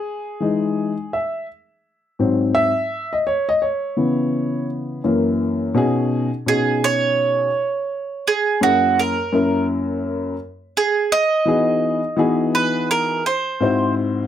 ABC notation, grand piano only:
X:1
M:4/4
L:1/16
Q:"Swing 16ths" 1/4=84
K:B
V:1 name="Grand piano"
G6 e2 z6 e2- | e d c d c6 z6 | [B,,CDFG]2 z2 [B,,CDFG]6 z6 | [F,,A,CEG]2 z2 [F,,A,CEA]6 z6 |
[E,B,DFG]2 z2 [E,B,DFG]6 z2 [G,,^B,EF^B]4 |]
V:2 name="Grand piano" clef=bass
z2 [E,G,D]2 z8 [G,,F,^B,]2 z2 | z6 [C,E,B,]6 [F,,E,A,]4 | z16 | z16 |
z16 |]